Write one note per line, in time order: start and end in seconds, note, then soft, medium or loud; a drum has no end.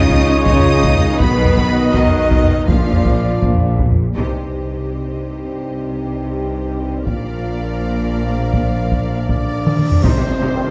0.00 0.38 C#2 medium
0.00 0.38 C#2 loud
0.00 0.38 C#3 loud
0.00 2.64 D#3 medium
0.00 1.16 G#3 medium
0.00 1.04 C#4 medium
0.00 1.20 C#4 medium
0.00 0.45 D#4 medium
0.00 1.04 F4 loud
0.00 1.20 G#4 loud
0.00 1.15 C#5 medium
0.00 1.20 C#5 medium
0.00 0.45 D#5 loud
0.00 1.20 F5 medium
0.00 0.45 D#6 loud
0.10 taiko medium
0.46 1.11 C#2 medium
0.46 1.11 C#3 medium
0.46 1.18 D#4 loud
0.46 1.18 D#5 medium
0.46 1.18 D#6 loud
0.46 taiko medium
0.59 taiko low medium
0.84 taiko medium
0.96 taiko low medium
1.19 1.85 B1 medium
1.19 1.85 B2 loud
1.19 2.63 F#3 medium
1.19 1.93 B3 loud
1.19 2.64 B3 loud
1.19 2.67 D#4 medium
1.19 2.64 D#4 medium
1.19 2.67 F#4 medium
1.19 1.93 B4 medium
1.19 2.68 B4 loud
1.19 2.63 D#5 loud
1.19 2.68 D#5 loud
1.19 1.92 B5 loud
1.19 taiko loud
1.45 taiko low medium
1.57 taiko medium
1.93 2.58 B1 medium
1.93 2.58 B2 medium
1.93 2.67 D#3 medium
1.93 2.67 D#4 medium
1.93 2.68 D#5 loud
1.93 taiko medium
2.07 taiko low medium
2.31 taiko medium
2.43 taiko low medium
2.66 3.33 A#1 medium
2.66 3.33 A#2 medium
2.66 3.38 A#2 medium
2.66 3.88 A#2 medium
2.66 3.41 F3 medium
2.66 3.88 F3 medium
2.66 3.88 A#3 medium
2.66 3.92 D4 medium
2.66 3.88 F4 medium
2.66 3.41 F4 medium
2.66 3.92 F4 medium
2.66 3.92 A#4 medium
2.66 3.87 D5 medium
2.66 3.40 F5 medium
2.66 3.92 F5 medium
2.66 taiko medium
2.93 taiko low medium
3.05 taiko medium
3.41 4.07 A#1 medium
3.41 4.07 A#2 medium
3.41 taiko medium
3.55 taiko low medium
3.79 taiko medium
3.92 taiko low medium
4.14 7.04 C2 medium
4.14 7.04 G2 soft
4.14 7.03 C3 medium
4.14 7.04 G3 medium
4.14 7.03 C4 medium
4.14 7.03 D#4 soft
4.14 7.03 G4 medium
4.14 7.04 C5 soft
4.14 7.03 D#5 medium
4.14 taiko soft
7.07 9.84 A#1 medium
7.07 9.80 A#2 medium
7.07 9.84 A#2 medium
7.07 9.80 F3 medium
7.07 9.30 A#3 medium
7.07 9.26 D4 medium
7.07 9.80 A#4 medium
7.07 9.80 D5 medium
7.07 9.26 F5 medium
7.07 taiko medium
8.54 taiko medium
8.54 cymbal swell soft
8.92 taiko medium
9.28 10.00 D4 medium
9.28 10.05 D5 medium
9.28 10.00 D5 medium
9.28 taiko medium
9.67 taiko mid medium
9.79 taiko mid medium
9.91 taiko low medium
10.03 10.09 C2 medium
10.03 10.10 C2 medium
10.03 10.09 C3 medium
10.03 10.71 C3 medium
10.03 10.09 G3 medium
10.03 10.71 C4 medium
10.03 10.09 D#4 medium
10.03 10.71 D#4 medium
10.03 10.71 G4 medium
10.03 10.71 C5 medium
10.03 10.71 D#5 medium
10.03 taiko medium
10.03 tam-tam medium
10.03 impact medium
10.16 10.21 C3 medium
10.16 10.23 C3 soft
10.16 10.23 G3 soft
10.41 10.46 C3 medium
10.41 10.47 G3 medium
10.41 10.47 D#4 medium
10.54 10.63 D#3 medium
10.54 10.63 G3 medium
10.66 10.71 C3 soft
10.66 10.71 D#3 medium
10.66 10.71 C4 soft